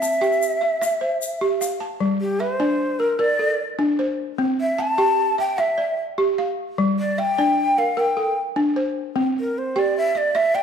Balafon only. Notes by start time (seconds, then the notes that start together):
0.02 A5
0.21 G4 G5
0.61 E5
0.82 E5
1.01 C5
1.41 G4
1.61 F5
1.80 A5
2.00 G3
2.40 E5
2.60 D4 D5
3.00 A#4
3.19 A#4
3.39 A4
3.79 D4
3.99 C5
4.38 C4
4.78 A5
4.98 G4 G5
5.38 E5
5.58 E5
5.78 D5
6.18 G4
6.38 F5
6.78 G3
7.18 E5
7.38 D4 D5
7.78 A#4
7.97 A#4
8.17 A4
8.56 D4
8.76 C5
9.16 C4
9.76 G4 G5
10.15 E5
10.35 E5
10.54 D5